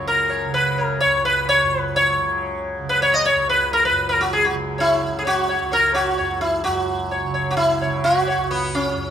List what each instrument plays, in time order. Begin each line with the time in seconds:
Already playing: tanpura C#2 F#2 C#3
0.07 sitar A#4
0.29 sitar C#5
0.46 tanpura C#3
0.54 sitar B4
0.78 sitar C#5
0.82 sitar A#4
1.00 sitar C#5
1.05 tanpura C#2
1.25 sitar B4
1.49 sitar C#5
1.62 tanpura F#2
1.80 sitar B4
1.96 sitar C#5
2.19 tanpura C#3
2.78 tanpura C#3
2.89 sitar B4
3.02 sitar C#5
3.14 sitar D#5
3.25 sitar C#5
3.35 tanpura C#2
3.49 sitar B4
3.73 sitar A#4
3.85 sitar B4
3.91 tanpura F#2
4.09 sitar A#4
4.21 sitar F#4
4.33 sitar G#4
4.45 tanpura C#3, sitar F#4
4.78 sitar E4 C#5
5.05 tanpura C#3
5.19 sitar G#4
5.25 sitar F#4 C#5
5.49 sitar C#5
5.62 tanpura C#2
5.72 sitar A#4 C#5
5.94 sitar F#4 C#5
6.18 tanpura F#2, sitar C#5
6.41 sitar E4
6.64 tanpura F#2, sitar F#4
7.11 sitar C#5
7.24 tanpura C#3
7.34 sitar C#5
7.51 sitar F#4
7.57 sitar E4
7.81 tanpura C#3, sitar C#5
8.04 sitar F#4
8.27 sitar C#5
8.37 tanpura C#2
8.51 sitar B3
8.75 sitar C#4
8.93 tanpura F#2